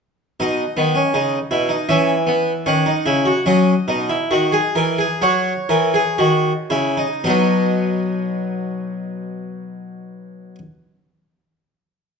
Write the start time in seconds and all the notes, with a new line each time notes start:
0.40 B2 D#4 D#5
0.77 D#3 B3
0.95 C#4
1.14 C#3 D#4
1.51 B2 E4
1.69 D#4
1.89 E3 C#4 E5
2.27 B3
2.66 D#3 C#4 F#5
2.86 D#4
3.06 C#3 E4
3.25 F#4
3.46 F#3 C#4 D#5
3.88 B2 D#4
4.09 E4
4.31 D#3 F#4
4.52 G#4
4.75 E3 A#4
4.98 G#4
5.22 F#3 F#4 C#5
5.69 E3 A#4
5.94 G#4
6.18 D#3 F#4
6.70 C#3 E4
6.97 D#4
7.24 B2 F#3 B3 D#4 D#5